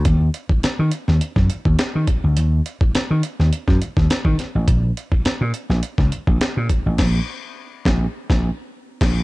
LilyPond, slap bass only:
\new Staff \with { instrumentName = "Slap bass" } { \clef bass \time 4/4 \key bes \minor \tempo 4 = 104 ees,8 r8. ees16 r16 ees,16 r16 ges,16 r16 ees,16 r16 ees16 r16 d,16 | ees,8 r8. ees16 r16 ees,16 r16 ges,16 r16 ees,16 r16 ees16 r16 a,,16 | bes,,8 r8. bes,16 r16 bes,,16 r16 des,16 r16 bes,,16 r16 bes,16 r16 a,,16 | bes,,8 r4 bes,,8 r16 bes,,8 r8. bes,,8 | }